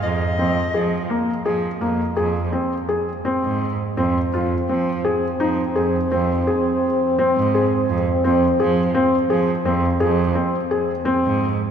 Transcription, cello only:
\new Staff \with { instrumentName = "Cello" } { \clef bass \time 11/8 \key f \minor \tempo 4 = 84 f,16 r16 f,16 r16 f8 r8 f16 r16 f,16 r16 f,8 r4 r16 aes,8 r16 | f,16 r16 f,16 r16 f8 r8 f16 r16 f,16 r16 f,8 r4 r16 aes,8 r16 | f,16 r16 f,16 r16 f8 r8 f16 r16 f,16 r16 f,8 r4 r16 aes,8 r16 | }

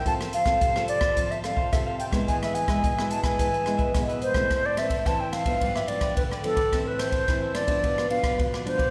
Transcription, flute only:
\new Staff \with { instrumentName = "Flute" } { \time 4/4 \key a \minor \tempo 4 = 108 a''8 f''4 d''8. e''16 f''8 e''16 f''16 g''8 | gis''16 e''16 gis''4 a''16 gis''4. r16 c''8~ | c''16 d''16 e''8 a''16 g''16 f''8. e''16 d''8 b'8 a'8~ | a'16 b'16 c''4 d''4 f''4 c''8 | }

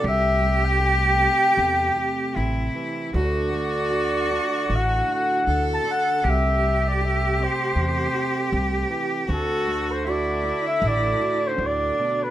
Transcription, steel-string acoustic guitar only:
\new Staff \with { instrumentName = "Steel-string acoustic guitar" } { \time 4/4 \key d \mixolydian \tempo 4 = 78 << { r8 g8 g'8 c'4 g'8 c'4 | <d a d' fis'>8 a8 fis'8 d'4 fis'8 d'4 | r8 g8 g'8 c'4 g'8 c'4 | r8 a8 fis'8 d'4 fis'4. | } \\ { c2 c4. e8 | d,2 a,4. d8 | c2 c4. e8 | d,2 a,4 a,8 b,8 | } >> }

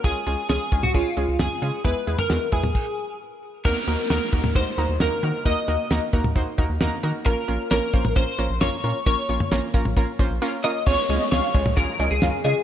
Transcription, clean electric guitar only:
\new Staff \with { instrumentName = "Clean electric guitar" } { \time 4/4 \key ees \dorian \tempo 4 = 133 aes'4 aes'8. ges'16 f'4 aes'4 | b'8. bes'8. gis'4. r4 | bes'4 bes'4 c''4 bes'4 | ees''4. r2 r8 |
bes'4 bes'4 c''4 des''4 | des''4. r2 ees''8 | des''4 des''4 bes'8. aes'8. aes'8 | }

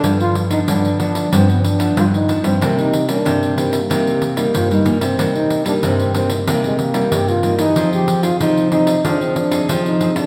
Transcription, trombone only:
\new Staff \with { instrumentName = "Trombone" } { \time 4/4 \key c \minor \tempo 4 = 93 d'16 f'8 ees'16 d'8 d'8 c'16 b16 d'8 f'16 ees'8 c'16~ | c'16 ees'8 d'8. c'16 bes4~ bes16 f'16 ees'8 c'16~ | c'16 ees'8 d'16 c'8 c'8 bes16 aes16 bes8 g'16 f'8 ees'16~ | ees'16 g'8 f'16 ees'8 ees'8 d'16 c'16 d'8 c'16 ees'8 d'16 | }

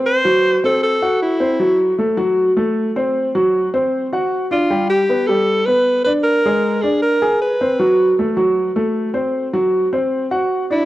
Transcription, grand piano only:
\new Staff \with { instrumentName = "Grand piano" } { \time 4/4 \key d \mixolydian \tempo 4 = 155 <c' c''>8 <fis fis'>4 <c' c''>4 <fis' fis''>4 <c' c''>8 | <fis fis'>4 <a a'>8 <fis fis'>4 <a a'>4 <c' c''>8~ | <c' c''>8 <fis fis'>4 <c' c''>4 <fis' fis''>4 <d' d''>8 | <g g'>4 <b b'>8 <g g'>4 <b b'>4 <d' d''>8~ |
<d' d''>8 <gis gis'>4 <d' d''>4 <gis' gis''>4 <c' c''>8 | <fis fis'>4 <a a'>8 <fis fis'>4 <a a'>4 <c' c''>8~ | <c' c''>8 <fis fis'>4 <c' c''>4 <fis' fis''>4 <d' d''>8 | }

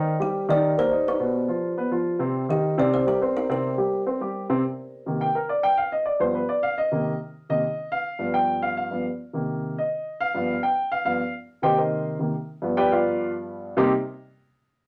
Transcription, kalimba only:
\new Staff \with { instrumentName = "Kalimba" } { \time 4/4 \key c \minor \tempo 4 = 210 r8 g'4 d''4 c''4 b'8~ | b'4. r2 r8 | r8 g'4 d''8 c''8 bes'4 bes'8 | bes'2. r4 |
r1 | r1 | r1 | r1 |
r1 | r1 | r1 | r1 |
r1 | }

